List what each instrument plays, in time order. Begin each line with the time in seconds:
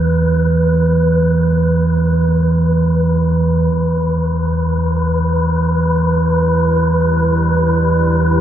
Already playing: synth drone E2 E3, synth texture B4
3.72 synth drone E2 E3, ambient pad E4, synth texture B4
4.29 ambient pad D5
4.79 ambient pad G4
6.34 ambient pad B4